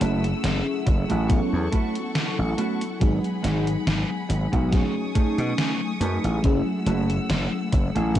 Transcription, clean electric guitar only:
0.01 0.24 A3 medium
0.01 0.24 C#4 medium
0.01 0.24 E4 medium
0.01 0.25 F#4 loud
0.86 muted clean electric guitar stroke medium
1.09 1.29 A3 medium
1.09 1.30 C#4 medium
1.09 1.30 E4 medium
1.09 1.30 F#4 medium
1.72 1.95 A3 medium
1.72 1.96 C#4 medium
1.72 1.96 E4 medium
1.72 1.96 F#4 loud
2.58 2.81 A3 medium
2.58 2.81 C#4 medium
2.58 2.81 E4 medium
2.58 2.82 F#4 loud
3.43 3.67 G#3 medium
3.43 3.67 B3 medium
3.43 3.67 D#4 medium
3.43 3.67 F#4 loud
4.29 muted clean electric guitar stroke medium
4.52 4.72 G#3 medium
4.52 4.72 B3 medium
4.52 4.73 D#4 medium
4.52 4.73 F#4 medium
5.15 5.38 A3 medium
5.15 5.38 C#4 medium
5.15 5.39 D#4 medium
5.15 5.39 G#4 loud
6.01 6.24 A3 medium
6.01 6.24 C#4 medium
6.01 6.24 D#4 medium
6.01 6.25 B4 loud
6.86 7.10 A3 medium
6.86 7.10 C#4 medium
6.86 7.10 E4 medium
6.86 7.10 F#4 loud
7.72 muted clean electric guitar stroke medium
7.95 8.15 A3 medium
7.95 8.16 C#4 medium
7.95 8.16 E4 medium
7.95 8.16 G#4 medium

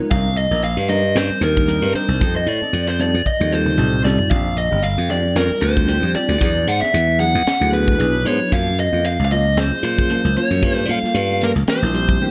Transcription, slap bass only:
0.11 0.48 C2 medium
0.51 0.75 A#1 medium
0.77 1.12 G2 medium
1.15 1.29 G2 medium
1.30 muted slap bass stroke soft
1.41 1.79 D#2 medium
1.82 1.93 G2 medium
1.94 muted slap bass stroke soft
2.08 2.19 C2 medium
2.21 2.45 F2 medium
2.46 2.60 A2 medium
2.61 muted slap bass stroke soft
2.73 3.10 F2 medium
3.14 3.25 F2 medium
3.26 muted slap bass stroke soft
3.41 3.75 D#2 medium
3.79 4.03 C2 medium
4.05 4.18 C2 medium
4.31 4.68 A#1 medium
4.72 4.96 G1 medium
4.98 5.33 F2 medium
5.35 5.49 F2 medium
5.50 muted slap bass stroke soft
5.62 5.99 D2 medium
6.02 6.14 F2 medium
6.15 muted slap bass stroke soft
6.29 6.40 D2 medium
6.41 6.65 E2 medium
6.67 6.81 G#2 medium
6.83 muted slap bass stroke soft
6.94 7.31 E2 medium
7.35 7.46 E2 medium
7.46 muted slap bass stroke soft
7.61 7.96 D2 medium
8.00 8.24 B1 medium
8.25 8.39 G#2 medium
8.52 8.89 F#2 medium
8.93 9.17 F2 medium
9.19 9.54 C#2 medium
9.57 9.70 C#2 medium
9.71 muted slap bass stroke soft
9.83 10.20 A#2 medium
10.25 10.35 C#2 medium
10.36 muted slap bass stroke soft
10.51 10.61 F#2 medium
10.63 10.86 G2 medium
10.89 11.02 A#2 medium
11.03 muted slap bass stroke soft
11.14 11.52 G2 medium
11.56 11.66 C#2 medium
11.68 muted slap bass stroke soft
11.82 12.17 A#1 medium

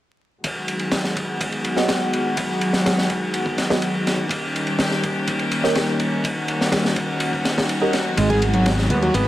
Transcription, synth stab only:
1.77 1.88 B3 medium
1.77 1.88 F#4 medium
1.77 1.88 G#4 medium
1.77 1.88 D#5 medium
3.70 3.81 B3 medium
3.70 3.81 F#4 medium
3.70 3.82 G#4 medium
3.70 3.81 D#5 medium
5.64 5.75 C#4 medium
5.64 5.75 G4 medium
5.64 5.75 A#4 medium
5.64 5.75 D#5 medium
7.82 7.93 C#4 medium
7.82 7.93 G4 medium
7.82 7.93 A#4 medium
7.82 7.93 D#5 medium

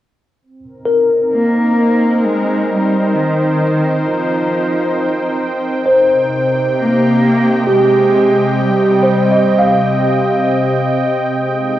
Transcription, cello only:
1.33 2.25 A#3 medium
2.24 2.73 G#3 medium
2.71 3.16 G3 medium
3.15 4.08 D#3 medium
4.06 5.42 F3 medium
6.80 7.66 A#3 medium
7.71 8.63 G#3 medium
8.61 10.42 G3 medium

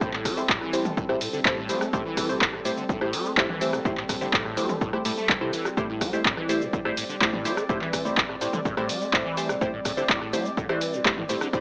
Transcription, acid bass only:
0.01 0.11 A2 loud
0.13 0.27 A2 loud
0.25 0.39 G3 medium
0.37 0.44 A3 medium
0.49 0.59 A2 loud
0.61 0.87 E3 loud
0.85 0.92 A2 medium
0.97 1.04 A2 medium
1.09 1.16 A2 medium
1.21 1.28 A2 medium
1.33 1.40 D3 medium
1.45 1.55 A2 loud
1.57 1.71 A2 loud
1.69 1.83 G3 medium
1.81 1.88 A3 medium
1.93 2.03 A2 loud
2.05 2.31 E3 loud
2.29 2.36 A2 medium
2.41 2.48 A2 medium
2.53 2.60 A2 medium
2.65 2.72 A2 medium
2.77 2.84 D3 medium
2.89 2.99 A2 loud
3.01 3.15 A2 loud
3.13 3.27 G3 medium
3.25 3.32 A3 medium
3.37 3.47 A2 loud
3.49 3.75 E3 loud
3.73 3.80 A2 medium
3.85 3.92 A2 medium
3.97 4.04 A2 medium
4.09 4.16 A2 medium
4.21 4.28 D3 medium
4.33 4.43 A2 loud
4.45 4.59 A2 loud
4.57 4.71 G3 medium
4.69 4.76 A3 medium
4.81 4.91 A2 loud
4.93 4.97 E3 loud
5.05 5.12 A2 loud
5.17 5.31 A3 medium
5.29 5.36 G2 loud
5.41 5.51 C3 loud
5.53 5.67 E3 medium
5.65 5.69 G3 medium
5.77 5.87 A2 loud
5.89 6.03 A2 loud
6.01 6.15 G3 medium
6.13 6.20 A3 medium
6.25 6.35 A2 loud
6.37 6.63 E3 loud
6.61 6.68 A2 medium
6.73 6.80 A2 medium
6.85 6.92 A2 medium
6.97 7.04 A2 medium
7.09 7.16 D3 medium
7.21 7.31 A2 loud
7.33 7.47 A2 loud
7.45 7.59 G3 medium
7.57 7.64 A3 medium
7.69 7.79 A2 loud
7.81 8.07 E3 loud
8.05 8.12 A2 medium
8.17 8.24 A2 medium
8.29 8.36 A2 medium
8.41 8.48 A2 medium
8.53 8.60 D3 medium
8.65 8.75 A2 loud
8.77 8.91 A2 loud
8.89 9.03 G3 medium
9.01 9.08 A3 medium
9.13 9.23 A2 loud
9.25 9.51 E3 loud
9.49 9.56 A2 medium
9.61 9.68 A2 medium
9.73 9.80 A2 medium
9.85 9.92 A2 medium
9.97 10.04 D3 medium
10.09 10.19 A2 loud
10.21 10.35 A2 loud
10.33 10.47 G3 medium
10.45 10.52 A3 medium
10.57 10.67 A2 loud
10.69 10.95 E3 loud
10.93 11.00 A2 medium
11.05 11.12 A2 medium
11.17 11.24 A2 medium
11.29 11.36 A2 medium
11.41 11.48 D3 medium
11.53 11.60 A2 loud

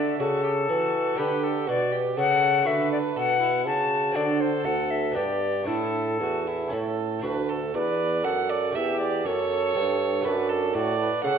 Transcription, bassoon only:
0.00 0.19 D3 medium
0.20 0.68 C#3 medium
0.69 1.18 E3 medium
1.19 1.69 D3 medium
1.68 2.17 B2 medium
2.17 2.68 C#3 medium
2.66 3.01 D3 medium
3.16 3.67 B2 medium
3.66 4.17 C#3 medium
4.16 4.67 D3 medium
4.66 5.17 D2 medium
5.16 5.67 G2 medium
5.68 6.19 A2 medium
6.20 6.71 E2 medium
6.72 7.23 A2 medium
7.24 7.71 D2 medium
7.74 8.26 E2 medium
8.24 8.75 F#2 medium
8.75 9.24 E2 medium
9.25 9.74 F#2 medium
9.76 10.25 G2 medium
10.26 10.74 F#2 medium
10.75 11.10 A2 medium
11.24 11.38 C#3 medium

